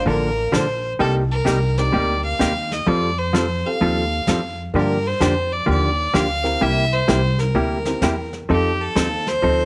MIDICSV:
0, 0, Header, 1, 6, 480
1, 0, Start_track
1, 0, Tempo, 468019
1, 1028, Time_signature, 4, 2, 24, 8
1, 9898, End_track
2, 0, Start_track
2, 0, Title_t, "Fiddle"
2, 0, Program_c, 0, 110
2, 81, Note_on_c, 0, 70, 96
2, 564, Note_on_c, 0, 72, 88
2, 579, Note_off_c, 0, 70, 0
2, 953, Note_off_c, 0, 72, 0
2, 1029, Note_on_c, 0, 69, 98
2, 1170, Note_off_c, 0, 69, 0
2, 1349, Note_on_c, 0, 70, 90
2, 1824, Note_on_c, 0, 74, 93
2, 1840, Note_off_c, 0, 70, 0
2, 2296, Note_off_c, 0, 74, 0
2, 2302, Note_on_c, 0, 77, 92
2, 2794, Note_on_c, 0, 75, 89
2, 2809, Note_off_c, 0, 77, 0
2, 2956, Note_on_c, 0, 74, 97
2, 2971, Note_off_c, 0, 75, 0
2, 3265, Note_on_c, 0, 72, 85
2, 3280, Note_off_c, 0, 74, 0
2, 3752, Note_on_c, 0, 77, 84
2, 3768, Note_off_c, 0, 72, 0
2, 4705, Note_off_c, 0, 77, 0
2, 4896, Note_on_c, 0, 70, 89
2, 5199, Note_on_c, 0, 72, 93
2, 5215, Note_off_c, 0, 70, 0
2, 5664, Note_on_c, 0, 74, 90
2, 5680, Note_off_c, 0, 72, 0
2, 5827, Note_off_c, 0, 74, 0
2, 5845, Note_on_c, 0, 74, 95
2, 6313, Note_on_c, 0, 77, 105
2, 6328, Note_off_c, 0, 74, 0
2, 6797, Note_on_c, 0, 76, 109
2, 6813, Note_off_c, 0, 77, 0
2, 7102, Note_on_c, 0, 72, 97
2, 7117, Note_off_c, 0, 76, 0
2, 7585, Note_on_c, 0, 70, 84
2, 7600, Note_off_c, 0, 72, 0
2, 8544, Note_off_c, 0, 70, 0
2, 8733, Note_on_c, 0, 67, 92
2, 9040, Note_on_c, 0, 69, 96
2, 9056, Note_off_c, 0, 67, 0
2, 9518, Note_on_c, 0, 72, 101
2, 9533, Note_off_c, 0, 69, 0
2, 9898, Note_off_c, 0, 72, 0
2, 9898, End_track
3, 0, Start_track
3, 0, Title_t, "Honky-tonk piano"
3, 0, Program_c, 1, 3
3, 0, Note_on_c, 1, 58, 72
3, 0, Note_on_c, 1, 62, 64
3, 0, Note_on_c, 1, 65, 60
3, 0, Note_on_c, 1, 70, 77
3, 510, Note_off_c, 1, 58, 0
3, 512, Note_off_c, 1, 62, 0
3, 513, Note_off_c, 1, 65, 0
3, 513, Note_off_c, 1, 70, 0
3, 1825, Note_on_c, 1, 60, 61
3, 1829, Note_on_c, 1, 63, 63
3, 1830, Note_on_c, 1, 67, 64
3, 1832, Note_on_c, 1, 70, 74
3, 2435, Note_off_c, 1, 60, 0
3, 2437, Note_off_c, 1, 63, 0
3, 2438, Note_off_c, 1, 67, 0
3, 2439, Note_off_c, 1, 70, 0
3, 3748, Note_on_c, 1, 60, 63
3, 3755, Note_on_c, 1, 65, 53
3, 3756, Note_on_c, 1, 67, 58
3, 3759, Note_on_c, 1, 69, 74
3, 4356, Note_off_c, 1, 60, 0
3, 4359, Note_off_c, 1, 65, 0
3, 4360, Note_off_c, 1, 67, 0
3, 4361, Note_off_c, 1, 69, 0
3, 4856, Note_on_c, 1, 62, 60
3, 4856, Note_on_c, 1, 70, 71
3, 4857, Note_on_c, 1, 67, 55
3, 4859, Note_on_c, 1, 65, 58
3, 5143, Note_off_c, 1, 62, 0
3, 5143, Note_off_c, 1, 67, 0
3, 5143, Note_off_c, 1, 70, 0
3, 5144, Note_off_c, 1, 65, 0
3, 6599, Note_on_c, 1, 60, 77
3, 6601, Note_on_c, 1, 67, 71
3, 6602, Note_on_c, 1, 64, 67
3, 6603, Note_on_c, 1, 70, 88
3, 6758, Note_off_c, 1, 60, 0
3, 6759, Note_off_c, 1, 67, 0
3, 6760, Note_off_c, 1, 64, 0
3, 6760, Note_off_c, 1, 70, 0
3, 8063, Note_on_c, 1, 67, 63
3, 8064, Note_on_c, 1, 64, 68
3, 8065, Note_on_c, 1, 60, 77
3, 8070, Note_on_c, 1, 70, 78
3, 8211, Note_off_c, 1, 67, 0
3, 8212, Note_off_c, 1, 60, 0
3, 8212, Note_off_c, 1, 64, 0
3, 8215, Note_off_c, 1, 70, 0
3, 8709, Note_on_c, 1, 65, 57
3, 8710, Note_on_c, 1, 60, 61
3, 8710, Note_on_c, 1, 63, 56
3, 8713, Note_on_c, 1, 69, 69
3, 9441, Note_off_c, 1, 60, 0
3, 9441, Note_off_c, 1, 65, 0
3, 9442, Note_off_c, 1, 63, 0
3, 9443, Note_off_c, 1, 69, 0
3, 9898, End_track
4, 0, Start_track
4, 0, Title_t, "Hollow-body jazz guitar"
4, 0, Program_c, 2, 26
4, 61, Note_on_c, 2, 50, 52
4, 70, Note_on_c, 2, 53, 52
4, 72, Note_on_c, 2, 58, 59
4, 76, Note_on_c, 2, 62, 60
4, 76, Note_on_c, 2, 69, 62
4, 292, Note_off_c, 2, 50, 0
4, 297, Note_off_c, 2, 53, 0
4, 298, Note_off_c, 2, 58, 0
4, 300, Note_off_c, 2, 62, 0
4, 300, Note_off_c, 2, 69, 0
4, 536, Note_on_c, 2, 50, 75
4, 539, Note_on_c, 2, 53, 78
4, 543, Note_on_c, 2, 58, 71
4, 547, Note_on_c, 2, 62, 70
4, 550, Note_on_c, 2, 69, 78
4, 663, Note_off_c, 2, 50, 0
4, 664, Note_off_c, 2, 53, 0
4, 666, Note_off_c, 2, 58, 0
4, 668, Note_off_c, 2, 62, 0
4, 670, Note_off_c, 2, 69, 0
4, 1018, Note_on_c, 2, 48, 59
4, 1021, Note_on_c, 2, 55, 64
4, 1025, Note_on_c, 2, 63, 68
4, 1026, Note_on_c, 2, 58, 66
4, 1029, Note_on_c, 2, 67, 70
4, 1250, Note_off_c, 2, 48, 0
4, 1252, Note_off_c, 2, 55, 0
4, 1254, Note_off_c, 2, 63, 0
4, 1255, Note_off_c, 2, 58, 0
4, 1256, Note_off_c, 2, 67, 0
4, 1487, Note_on_c, 2, 48, 78
4, 1495, Note_on_c, 2, 55, 81
4, 1498, Note_on_c, 2, 58, 82
4, 1502, Note_on_c, 2, 63, 79
4, 1503, Note_on_c, 2, 67, 85
4, 1617, Note_off_c, 2, 48, 0
4, 1621, Note_off_c, 2, 55, 0
4, 1623, Note_off_c, 2, 58, 0
4, 1625, Note_off_c, 2, 63, 0
4, 1625, Note_off_c, 2, 67, 0
4, 1975, Note_on_c, 2, 48, 56
4, 1975, Note_on_c, 2, 55, 51
4, 1986, Note_on_c, 2, 58, 58
4, 1987, Note_on_c, 2, 67, 60
4, 1988, Note_on_c, 2, 63, 57
4, 2208, Note_off_c, 2, 48, 0
4, 2208, Note_off_c, 2, 55, 0
4, 2214, Note_off_c, 2, 58, 0
4, 2214, Note_off_c, 2, 67, 0
4, 2215, Note_off_c, 2, 63, 0
4, 2456, Note_on_c, 2, 48, 74
4, 2464, Note_on_c, 2, 63, 76
4, 2465, Note_on_c, 2, 55, 71
4, 2467, Note_on_c, 2, 58, 75
4, 2471, Note_on_c, 2, 67, 82
4, 2581, Note_off_c, 2, 48, 0
4, 2586, Note_off_c, 2, 55, 0
4, 2586, Note_off_c, 2, 63, 0
4, 2587, Note_off_c, 2, 58, 0
4, 2589, Note_off_c, 2, 67, 0
4, 2939, Note_on_c, 2, 53, 62
4, 2940, Note_on_c, 2, 55, 63
4, 2946, Note_on_c, 2, 60, 56
4, 2950, Note_on_c, 2, 65, 71
4, 2952, Note_on_c, 2, 69, 65
4, 3170, Note_off_c, 2, 53, 0
4, 3171, Note_off_c, 2, 55, 0
4, 3173, Note_off_c, 2, 60, 0
4, 3175, Note_off_c, 2, 65, 0
4, 3176, Note_off_c, 2, 69, 0
4, 3417, Note_on_c, 2, 53, 78
4, 3424, Note_on_c, 2, 55, 71
4, 3425, Note_on_c, 2, 65, 74
4, 3428, Note_on_c, 2, 60, 83
4, 3432, Note_on_c, 2, 69, 81
4, 3541, Note_off_c, 2, 53, 0
4, 3545, Note_off_c, 2, 55, 0
4, 3546, Note_off_c, 2, 65, 0
4, 3547, Note_off_c, 2, 60, 0
4, 3549, Note_off_c, 2, 69, 0
4, 3908, Note_on_c, 2, 53, 57
4, 3908, Note_on_c, 2, 55, 57
4, 3914, Note_on_c, 2, 60, 62
4, 3916, Note_on_c, 2, 65, 61
4, 3919, Note_on_c, 2, 69, 65
4, 4134, Note_off_c, 2, 53, 0
4, 4134, Note_off_c, 2, 55, 0
4, 4137, Note_off_c, 2, 60, 0
4, 4138, Note_off_c, 2, 65, 0
4, 4139, Note_off_c, 2, 69, 0
4, 4390, Note_on_c, 2, 53, 76
4, 4398, Note_on_c, 2, 65, 78
4, 4401, Note_on_c, 2, 55, 73
4, 4401, Note_on_c, 2, 60, 81
4, 4403, Note_on_c, 2, 69, 73
4, 4508, Note_off_c, 2, 53, 0
4, 4512, Note_off_c, 2, 65, 0
4, 4513, Note_off_c, 2, 55, 0
4, 4513, Note_off_c, 2, 60, 0
4, 4514, Note_off_c, 2, 69, 0
4, 4871, Note_on_c, 2, 50, 59
4, 4876, Note_on_c, 2, 58, 62
4, 4877, Note_on_c, 2, 53, 60
4, 4883, Note_on_c, 2, 67, 67
4, 4884, Note_on_c, 2, 62, 67
4, 5095, Note_off_c, 2, 50, 0
4, 5098, Note_off_c, 2, 53, 0
4, 5098, Note_off_c, 2, 58, 0
4, 5101, Note_off_c, 2, 67, 0
4, 5102, Note_off_c, 2, 62, 0
4, 5338, Note_on_c, 2, 50, 73
4, 5343, Note_on_c, 2, 53, 78
4, 5349, Note_on_c, 2, 58, 73
4, 5352, Note_on_c, 2, 62, 81
4, 5352, Note_on_c, 2, 67, 77
4, 5462, Note_off_c, 2, 50, 0
4, 5464, Note_off_c, 2, 53, 0
4, 5467, Note_off_c, 2, 58, 0
4, 5469, Note_off_c, 2, 62, 0
4, 5469, Note_off_c, 2, 67, 0
4, 5807, Note_on_c, 2, 50, 62
4, 5807, Note_on_c, 2, 53, 55
4, 5810, Note_on_c, 2, 58, 57
4, 5816, Note_on_c, 2, 62, 64
4, 5821, Note_on_c, 2, 67, 59
4, 6043, Note_off_c, 2, 50, 0
4, 6043, Note_off_c, 2, 53, 0
4, 6045, Note_off_c, 2, 58, 0
4, 6048, Note_off_c, 2, 62, 0
4, 6051, Note_off_c, 2, 67, 0
4, 6293, Note_on_c, 2, 50, 70
4, 6296, Note_on_c, 2, 53, 74
4, 6297, Note_on_c, 2, 58, 80
4, 6300, Note_on_c, 2, 62, 70
4, 6307, Note_on_c, 2, 67, 79
4, 6420, Note_off_c, 2, 50, 0
4, 6421, Note_off_c, 2, 53, 0
4, 6422, Note_off_c, 2, 58, 0
4, 6423, Note_off_c, 2, 62, 0
4, 6427, Note_off_c, 2, 67, 0
4, 6780, Note_on_c, 2, 48, 59
4, 6783, Note_on_c, 2, 55, 64
4, 6789, Note_on_c, 2, 64, 60
4, 6790, Note_on_c, 2, 58, 68
4, 6792, Note_on_c, 2, 67, 68
4, 7010, Note_off_c, 2, 48, 0
4, 7012, Note_off_c, 2, 55, 0
4, 7015, Note_off_c, 2, 64, 0
4, 7016, Note_off_c, 2, 58, 0
4, 7016, Note_off_c, 2, 67, 0
4, 7260, Note_on_c, 2, 48, 76
4, 7263, Note_on_c, 2, 55, 75
4, 7266, Note_on_c, 2, 58, 80
4, 7266, Note_on_c, 2, 64, 87
4, 7276, Note_on_c, 2, 67, 85
4, 7383, Note_off_c, 2, 48, 0
4, 7385, Note_off_c, 2, 55, 0
4, 7386, Note_off_c, 2, 58, 0
4, 7386, Note_off_c, 2, 64, 0
4, 7391, Note_off_c, 2, 67, 0
4, 7743, Note_on_c, 2, 48, 53
4, 7743, Note_on_c, 2, 55, 53
4, 7745, Note_on_c, 2, 58, 58
4, 7749, Note_on_c, 2, 64, 59
4, 7754, Note_on_c, 2, 67, 60
4, 7972, Note_off_c, 2, 48, 0
4, 7972, Note_off_c, 2, 55, 0
4, 7973, Note_off_c, 2, 58, 0
4, 7976, Note_off_c, 2, 64, 0
4, 7978, Note_off_c, 2, 67, 0
4, 8231, Note_on_c, 2, 48, 75
4, 8236, Note_on_c, 2, 55, 65
4, 8237, Note_on_c, 2, 58, 72
4, 8243, Note_on_c, 2, 64, 76
4, 8248, Note_on_c, 2, 67, 85
4, 8350, Note_off_c, 2, 48, 0
4, 8352, Note_off_c, 2, 55, 0
4, 8353, Note_off_c, 2, 58, 0
4, 8355, Note_off_c, 2, 64, 0
4, 8358, Note_off_c, 2, 67, 0
4, 8707, Note_on_c, 2, 53, 62
4, 8715, Note_on_c, 2, 60, 67
4, 8719, Note_on_c, 2, 63, 66
4, 8725, Note_on_c, 2, 69, 73
4, 8935, Note_off_c, 2, 53, 0
4, 8939, Note_off_c, 2, 60, 0
4, 8941, Note_off_c, 2, 63, 0
4, 8944, Note_off_c, 2, 69, 0
4, 9185, Note_on_c, 2, 53, 66
4, 9193, Note_on_c, 2, 60, 78
4, 9195, Note_on_c, 2, 63, 77
4, 9195, Note_on_c, 2, 69, 89
4, 9308, Note_off_c, 2, 53, 0
4, 9312, Note_off_c, 2, 60, 0
4, 9313, Note_off_c, 2, 63, 0
4, 9313, Note_off_c, 2, 69, 0
4, 9666, Note_on_c, 2, 53, 52
4, 9676, Note_on_c, 2, 60, 53
4, 9678, Note_on_c, 2, 69, 65
4, 9679, Note_on_c, 2, 63, 54
4, 9896, Note_off_c, 2, 53, 0
4, 9898, Note_off_c, 2, 60, 0
4, 9898, Note_off_c, 2, 63, 0
4, 9898, Note_off_c, 2, 69, 0
4, 9898, End_track
5, 0, Start_track
5, 0, Title_t, "Upright bass"
5, 0, Program_c, 3, 32
5, 57, Note_on_c, 3, 33, 84
5, 470, Note_off_c, 3, 33, 0
5, 547, Note_on_c, 3, 34, 82
5, 955, Note_off_c, 3, 34, 0
5, 1025, Note_on_c, 3, 36, 86
5, 1410, Note_off_c, 3, 36, 0
5, 1508, Note_on_c, 3, 36, 84
5, 1916, Note_off_c, 3, 36, 0
5, 1984, Note_on_c, 3, 38, 83
5, 2393, Note_off_c, 3, 38, 0
5, 2464, Note_on_c, 3, 39, 87
5, 2873, Note_off_c, 3, 39, 0
5, 2943, Note_on_c, 3, 41, 93
5, 3711, Note_off_c, 3, 41, 0
5, 3907, Note_on_c, 3, 39, 89
5, 4314, Note_off_c, 3, 39, 0
5, 4380, Note_on_c, 3, 41, 78
5, 4790, Note_off_c, 3, 41, 0
5, 4859, Note_on_c, 3, 43, 85
5, 5245, Note_off_c, 3, 43, 0
5, 5339, Note_on_c, 3, 41, 81
5, 5750, Note_off_c, 3, 41, 0
5, 5826, Note_on_c, 3, 39, 83
5, 6234, Note_off_c, 3, 39, 0
5, 6304, Note_on_c, 3, 38, 79
5, 6713, Note_off_c, 3, 38, 0
5, 6781, Note_on_c, 3, 36, 90
5, 7167, Note_off_c, 3, 36, 0
5, 7267, Note_on_c, 3, 36, 90
5, 7675, Note_off_c, 3, 36, 0
5, 7738, Note_on_c, 3, 38, 84
5, 8150, Note_off_c, 3, 38, 0
5, 8221, Note_on_c, 3, 40, 86
5, 8632, Note_off_c, 3, 40, 0
5, 8713, Note_on_c, 3, 41, 86
5, 9095, Note_off_c, 3, 41, 0
5, 9185, Note_on_c, 3, 39, 80
5, 9595, Note_off_c, 3, 39, 0
5, 9671, Note_on_c, 3, 38, 85
5, 9898, Note_off_c, 3, 38, 0
5, 9898, End_track
6, 0, Start_track
6, 0, Title_t, "Drums"
6, 71, Note_on_c, 9, 25, 38
6, 548, Note_on_c, 9, 38, 66
6, 548, Note_on_c, 9, 44, 53
6, 651, Note_off_c, 9, 38, 0
6, 651, Note_off_c, 9, 44, 0
6, 1025, Note_off_c, 9, 25, 0
6, 1025, Note_on_c, 9, 25, 50
6, 1504, Note_on_c, 9, 38, 66
6, 1504, Note_on_c, 9, 44, 64
6, 1606, Note_off_c, 9, 38, 0
6, 1606, Note_off_c, 9, 44, 0
6, 1821, Note_on_c, 9, 38, 40
6, 1924, Note_off_c, 9, 38, 0
6, 1988, Note_off_c, 9, 25, 0
6, 1988, Note_on_c, 9, 25, 43
6, 2469, Note_on_c, 9, 38, 67
6, 2469, Note_on_c, 9, 44, 55
6, 2571, Note_off_c, 9, 38, 0
6, 2571, Note_off_c, 9, 44, 0
6, 2784, Note_on_c, 9, 38, 42
6, 2887, Note_off_c, 9, 38, 0
6, 2951, Note_off_c, 9, 25, 0
6, 2951, Note_on_c, 9, 25, 47
6, 3430, Note_on_c, 9, 38, 69
6, 3430, Note_on_c, 9, 44, 57
6, 3532, Note_off_c, 9, 38, 0
6, 3532, Note_off_c, 9, 44, 0
6, 3906, Note_off_c, 9, 25, 0
6, 3906, Note_on_c, 9, 25, 50
6, 4381, Note_on_c, 9, 38, 69
6, 4381, Note_on_c, 9, 44, 58
6, 4483, Note_off_c, 9, 38, 0
6, 4483, Note_off_c, 9, 44, 0
6, 4857, Note_off_c, 9, 25, 0
6, 4857, Note_on_c, 9, 25, 49
6, 5341, Note_on_c, 9, 38, 66
6, 5341, Note_on_c, 9, 44, 51
6, 5444, Note_off_c, 9, 38, 0
6, 5444, Note_off_c, 9, 44, 0
6, 5817, Note_off_c, 9, 25, 0
6, 5817, Note_on_c, 9, 25, 46
6, 6303, Note_on_c, 9, 38, 64
6, 6303, Note_on_c, 9, 44, 51
6, 6405, Note_off_c, 9, 38, 0
6, 6405, Note_off_c, 9, 44, 0
6, 6617, Note_on_c, 9, 38, 38
6, 6719, Note_off_c, 9, 38, 0
6, 6786, Note_off_c, 9, 25, 0
6, 6786, Note_on_c, 9, 25, 45
6, 7264, Note_on_c, 9, 38, 72
6, 7264, Note_on_c, 9, 44, 52
6, 7367, Note_off_c, 9, 38, 0
6, 7367, Note_off_c, 9, 44, 0
6, 7576, Note_on_c, 9, 38, 38
6, 7679, Note_off_c, 9, 38, 0
6, 7743, Note_off_c, 9, 25, 0
6, 7743, Note_on_c, 9, 25, 49
6, 8055, Note_on_c, 9, 38, 45
6, 8158, Note_off_c, 9, 38, 0
6, 8223, Note_on_c, 9, 38, 67
6, 8223, Note_on_c, 9, 44, 53
6, 8326, Note_off_c, 9, 38, 0
6, 8326, Note_off_c, 9, 44, 0
6, 8543, Note_on_c, 9, 38, 36
6, 8645, Note_off_c, 9, 38, 0
6, 8706, Note_off_c, 9, 25, 0
6, 8706, Note_on_c, 9, 25, 41
6, 9192, Note_on_c, 9, 38, 69
6, 9192, Note_on_c, 9, 44, 57
6, 9295, Note_off_c, 9, 38, 0
6, 9295, Note_off_c, 9, 44, 0
6, 9505, Note_on_c, 9, 38, 37
6, 9608, Note_off_c, 9, 38, 0
6, 9673, Note_off_c, 9, 25, 0
6, 9673, Note_on_c, 9, 25, 49
6, 9898, Note_off_c, 9, 25, 0
6, 9898, End_track
0, 0, End_of_file